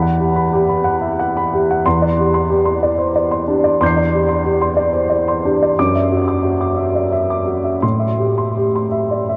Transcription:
Already playing: E2 B5
0.02 F#5
0.19 G4
0.36 B5
0.53 G4
0.69 B5
0.84 F#5
1.01 E5
1.19 F#5
1.37 B5
1.53 G4
1.71 F#5
1.86 E2 C6
2.02 D5
2.18 G4
2.34 C6
2.50 G4
2.65 C6
2.83 D5
2.98 C5
3.16 D5
3.31 C6
3.48 D4 G4
3.64 D5
3.81 E2 C6 D6 G6
3.86 C7
3.97 D5
4.13 G4
4.29 C6
4.44 G4
4.62 C6
4.77 D5
4.93 C5
5.10 D5
5.28 C6
5.45 D4 G4
5.63 D5
5.79 F#2 D6
5.95 E5
6.12 F#4
6.28 D6
6.44 F#4
6.61 D6
6.77 E5
6.95 D5
7.12 E5
7.30 D6
7.47 F#4
7.64 E5
7.82 A2 C6
7.99 E5
8.19 G4
8.38 C6
8.57 G4
8.76 C6
8.92 E5
9.11 D5
9.29 E5

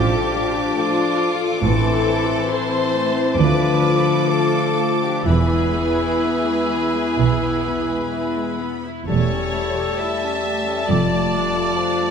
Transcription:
Already playing: A1 A2 F3 A3 D4 F4 G4 A4 A5 D6
0.13 A4
0.34 D4 F4
0.57 D4
0.76 F3 A3 A4 A5 D6
0.80 F4
0.98 D4
1.19 F4
1.41 A4
1.62 A1 A2 E3 A3 C4 E4 A4 A5 C6
1.84 C4
2.05 C4 E4
2.27 A4
2.48 E4 A4 C6
2.52 E3 C5 A5
2.71 C4
2.93 A3 E4
3.14 C4
3.36 D2 D3 F3 A3 F4 B4 A5 D6
3.59 D4
3.83 D4 F4
4.06 A4
4.27 F3 F4 A4 A5 D6
4.54 D4
4.78 A3 F4
5.02 D4 G4
5.22 E1 E3 B3 E4 B5 E6
5.27 E2 E3 G#4 B4
5.52 G#3
5.75 B3
6.00 E4
6.24 B3 E5
6.47 G#3
6.71 E3 E4
6.95 G#3
7.19 B1 B2 B3
7.43 E4
7.67 B3
7.88 G#3
8.12 E3 E5
8.36 G#3
8.60 B3 E4
8.85 E4
9.08 E1 E2 G3 A3 G4 C#5 A5 E6
9.31 C#4
9.53 A3 E4
9.77 G4
9.99 E4 E5
10.22 C#4
10.44 A3 G4
10.66 C#4
10.88 F1 F2 F3 F4 D5 D6
11.12 A3
11.33 A3 D4
11.57 F4
11.77 F3 D4 D5
12.03 A3

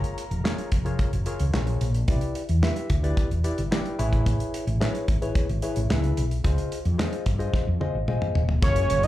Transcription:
Already playing: F4 G#4 A#4 C#5
0.04 closed hi-hat
0.18 closed hi-hat
0.31 F1, closed hi-hat
0.44 F4 G#4 A#4 C#5, snare, clap
0.58 closed hi-hat
0.72 F1, kick, closed hi-hat
0.85 F4 G#4 A#4 C#5, closed hi-hat
0.99 kick, closed hi-hat
1.13 F#1, closed hi-hat
1.26 F4 G#4 A#4 C#5, closed hi-hat
1.40 C#2, closed hi-hat
1.53 A#1 F4 G#4 A#4 C#5, snare, clap
1.67 closed hi-hat
1.81 A#1, closed hi-hat
1.95 closed hi-hat
2.08 C2 E4 G4 B4 D5, kick, closed hi-hat
2.21 closed hi-hat
2.35 closed hi-hat
2.49 E2, closed hi-hat
2.62 E4 G4 B4 E5, snare, clap
2.76 closed hi-hat
2.90 D2, kick, closed hi-hat
3.03 E4 G4 B4 D5, closed hi-hat
3.17 kick, closed hi-hat
3.31 E1, closed hi-hat
3.44 E4 G4 B4 D5, closed hi-hat
3.58 G1, closed hi-hat
3.71 E4 G4 B4 D5 G5, snare, clap
3.86 closed hi-hat
3.99 A1 E4 G#4 B4 C#5 E5, closed hi-hat
4.13 kick, closed hi-hat
4.26 kick, closed hi-hat
4.40 closed hi-hat
4.54 closed hi-hat
4.67 A1, closed hi-hat
4.80 E4 G#4 B4 C#5, snare, clap
4.95 closed hi-hat
5.08 G#1, kick, closed hi-hat
5.22 E4 G#4 B4 C#5, closed hi-hat
5.35 kick, closed hi-hat
5.49 G#1, closed hi-hat
5.62 E4 G#4 B4 C#5, closed hi-hat
5.76 A1, closed hi-hat
5.90 C#2 E4 G#4 B4 E5, snare, clap
6.04 closed hi-hat
6.17 B1, closed hi-hat
6.31 closed hi-hat
6.44 C#2 F4 G#4 C5 D#5, kick, closed hi-hat
6.58 closed hi-hat
6.72 closed hi-hat
6.85 F2, closed hi-hat
6.98 F4 G#4 C5 D#5, snare, clap
7.13 closed hi-hat
7.26 G2, kick, closed hi-hat
7.39 F4 G#4 C5 D#5, closed hi-hat
7.54 kick, snare
7.67 F2
7.80 F4 G#4 C5 D#5, high tom
7.95 G#1
8.08 F4 G#4 C5 D#5, mid tom
8.22 mid tom
8.35 D#1, floor tom
8.49 floor tom
8.62 F#1 F#3 G#3 A#3 F4 G#4 A#4 C#5, kick, closed hi-hat
8.76 closed hi-hat
8.90 F#1, closed hi-hat
9.03 D#5, closed hi-hat

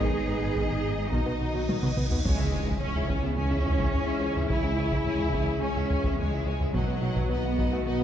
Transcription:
Already playing: D#3 B3 D#4 D#5
0.00 G#1 D#3 G#4 C#5, taiko, cymbal swell
0.14 G#3
0.28 G#1 G#2 B3 B4
0.41 G#1 G#2 G#3
0.56 G#1 G#2 D#3 D#5, taiko
0.69 G#1 G#2 G#3
0.83 G#1 G#2 B3
0.98 G#2
1.12 B1 B2 D#3 D#4 F#4 D#5, taiko
1.26 B1 F#3 B3
1.40 B1 B2 B3
1.54 B1 B2 F#3
1.68 B1 B2 D#3, taiko high
1.82 B1 F#3 B3, taiko mid
1.97 B1 B3, taiko mid
2.10 B1 F#3 B3, taiko low
2.24 C#2 E3 G#3 C#4 E4 G#4 C#5 G#5, taiko, impact
2.39 C#3 E4 G#4 E5
2.52 C#2 C#4 C#5 G#5
2.67 C#2 E4 G#4 E5, taiko
2.80 C#2 C#4 C#5 G#5
2.95 C#2 E4 G#4 E5, taiko low
3.08 C#2 C#4 C#5 G#5, taiko
3.22 C#3 B3 E4 G#4 E5
3.36 C#2 C#4 C#5 G#5
3.51 C#3 E4 G#4 E5, taiko low
3.64 C#2 C#4 C#5 G#5, taiko low
3.78 C#2 E4 G#4 E5, taiko
3.92 C#2 C#4 C#5 G#5, taiko low
4.06 C#2 E4 G#4 E5
4.20 C#2 C#4 C#5 G#5
4.34 C#2 E4 G#4 E5, taiko low
4.49 C#2 C#4 E4 C#5 G#5, taiko
4.63 C#3 E4 G#4 E5
4.77 C#2 C#4 C#5 G#5
4.91 C#2 E4 G#4 E5, taiko
5.05 C#2 C#4 C#5 G#5
5.20 C#2 E4 G#4 E5, taiko low
5.33 C#2 C#4 C#5 G#5, taiko
5.48 C#3 E4 G#4 E5
5.61 C#2 C#4 C#5 G#5
5.76 C#3 E4 G#4 E5, taiko low
5.90 C#2 C#4 C#5 G#5, taiko low
6.03 C#2 E4 G#4 E5, taiko
6.17 C#2 G#3 C#4 C#5 G#5, taiko low
6.32 C#2 E4 G#4 E5
6.46 C#2 C#4 C#5 G#5
6.60 C#2 E4 G#4 E5, taiko low
6.73 B1 B2 D#3 F#3 B3 D#4 F#4 B4 D#5 F#5, taiko
6.88 B3 F#4 D#5 F#5
7.02 B2 D#4 D#5 F#5
7.15 B2 F#4 D#5 F#5, taiko
7.29 B1 B2 B3 D#4 D#5 F#5
7.44 B2 F#4 D#5 F#5
7.59 B2 D#4 D#5 F#5, taiko
7.72 A3 B3 F#4 D#5 F#5
7.86 B1 B2 B3 D#4 D#5 F#5
8.00 B3 D#5

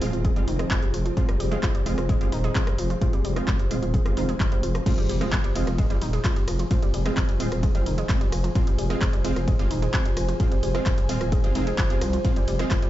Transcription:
Already playing: F3 C4 F4 G#4 C5 G#5
0.01 D#1 G#3 C4 F4, open hi-hat
0.13 D#1 F3, closed hi-hat
0.25 G#3, kick, closed hi-hat
0.36 G3 G#3 C4 F4, closed hi-hat
0.48 F1 D#3, open hi-hat
0.59 G#3, cross-stick, closed hi-hat
0.71 F3 G#3 C4 F4, kick, clap, closed hi-hat
0.82 G3, closed hi-hat
0.94 F1 F3, open hi-hat
1.06 F3, closed hi-hat
1.17 F3 G#3 C4 F4, kick, closed hi-hat
1.29 G3, cross-stick, closed hi-hat
1.40 F1 G3, open hi-hat
1.51 G#3 C4 F4, closed hi-hat
1.63 F3, kick, clap, closed hi-hat
1.75 G3, closed hi-hat
1.86 F1 G#3 C4 F4, open hi-hat
1.98 F1 F3, cross-stick, closed hi-hat
2.09 G#3, kick, closed hi-hat
2.21 G3 G#3 C4 F4, closed hi-hat
2.32 D#1 D#3, open hi-hat
2.44 G#3, closed hi-hat
2.55 F3 G#3 C4 F4, kick, clap, closed hi-hat
2.67 G3, cross-stick, closed hi-hat
2.78 F1 F3, open hi-hat
2.90 F3, closed hi-hat
3.01 F3 G#3 C4 F4, kick, closed hi-hat
3.13 G3, closed hi-hat
3.25 F1 G3, open hi-hat
3.36 G#3 C4 F4, cross-stick, closed hi-hat
3.48 F3, kick, clap, closed hi-hat
3.59 G3, closed hi-hat
3.71 D#1 G#3 C4 F4, open hi-hat
3.82 D#1 F3, closed hi-hat
3.94 G#3, kick, closed hi-hat
4.06 G3 G#3 C4 F4, cross-stick, closed hi-hat
4.17 F1 D#3 G#3 C4 F4, open hi-hat
4.29 G#3, closed hi-hat
4.40 F3, kick, clap, closed hi-hat
4.52 G3 G#3 C4 F4, closed hi-hat
4.63 F1 F3, open hi-hat
4.75 F3, cross-stick, closed hi-hat
4.86 F3 G#3 C4 F4, kick, closed hi-hat, crash, ride, impact
4.98 G3, closed hi-hat, ride
5.05 F1 G3 G#4, open hi-hat, ride
5.21 G#3 C4 F4, cross-stick, closed hi-hat, ride
5.32 F3, kick, clap, closed hi-hat, ride
5.44 G3, closed hi-hat, ride
5.50 G#5
5.55 F1 G#3 C4 F4, open hi-hat, ride
5.67 F1 F3, cross-stick, closed hi-hat, ride
5.73 C5
5.78 G#3, kick, closed hi-hat, ride
5.90 G3 G#3 C4 F4, closed hi-hat, ride
6.01 D#1 D#3, open hi-hat, ride
6.13 G#3, closed hi-hat, ride
6.25 F3 G#3 C4 F4, kick, clap, closed hi-hat, ride
6.36 G3, closed hi-hat, ride
6.48 F1 F3, cross-stick, open hi-hat, ride
6.59 F3, closed hi-hat, ride
6.71 F3 G#3 C4 F4, kick, closed hi-hat, ride
6.82 G3, closed hi-hat, ride
6.94 F1 G3, open hi-hat, ride
7.06 G#3 C4 F4, cross-stick, closed hi-hat, ride
7.17 F3, kick, clap, closed hi-hat, ride
7.29 G3, closed hi-hat, ride
7.40 D#1 G#3 C4 F4, open hi-hat, ride
7.52 D#1 F3, cross-stick, closed hi-hat, ride
7.63 G#3, kick, closed hi-hat, ride
7.75 G3 G#3 C4 F4, closed hi-hat, ride
7.86 F1 D#3, open hi-hat, ride
7.98 G#3, closed hi-hat, ride
8.09 F3 G#3 C4 F4, kick, clap, closed hi-hat, ride
8.21 G3, closed hi-hat, ride
8.32 F1 F3, cross-stick, open hi-hat, ride
8.44 F3, closed hi-hat, ride
8.55 F3 G#3 C4 F4, kick, closed hi-hat, ride
8.67 G3, closed hi-hat, ride
8.78 F1 G3, open hi-hat, ride
8.90 G#3 C4 F4, cross-stick, closed hi-hat, ride
9.01 F3, kick, clap, closed hi-hat, ride
9.13 G3, closed hi-hat, ride
9.24 F1 G#3 C4 F4, open hi-hat, ride
9.36 F1 F3, cross-stick, closed hi-hat, ride
9.48 G#3, kick, closed hi-hat, ride
9.59 G3 G#3 C4 F4, closed hi-hat, ride
9.71 D#1 D#3, open hi-hat, ride
9.82 G#3, closed hi-hat, ride
9.94 F3 G#3 C4 F4, kick, clap, closed hi-hat, ride
10.05 G3, closed hi-hat, ride
10.17 F1 F3, cross-stick, open hi-hat, ride
10.28 F3, closed hi-hat, ride
10.40 F3 G#3 C4 F4, kick, closed hi-hat, ride
10.52 G3, closed hi-hat, ride
10.63 F1 G3, open hi-hat, ride
10.74 G#3 C4 F4, cross-stick, closed hi-hat, ride
10.86 F3, kick, clap, closed hi-hat, ride
10.98 G3, closed hi-hat, ride
11.09 D#1 G#3 C4 F4, open hi-hat, ride
11.21 D#1 F3, cross-stick, closed hi-hat, ride
11.32 G#3, kick, closed hi-hat, ride
11.44 G3 G#3 C4 F4, closed hi-hat, ride
11.55 F1 D#3 G#3 C4 F4, open hi-hat, ride
11.67 G#3, closed hi-hat, ride
11.78 F3, kick, clap, closed hi-hat, ride
11.90 G3 G#3 C4 F4, closed hi-hat, ride
12.01 C2 F3, cross-stick, open hi-hat, ride
12.13 F3, closed hi-hat, ride
12.24 F3 G#3 C4 F4, kick, closed hi-hat, ride
12.36 G3, closed hi-hat, ride
12.48 F1 G3, open hi-hat, ride
12.59 G#3 C4 F4, cross-stick, closed hi-hat, ride
12.71 F3, kick, clap, closed hi-hat, ride
12.82 G3, closed hi-hat, ride

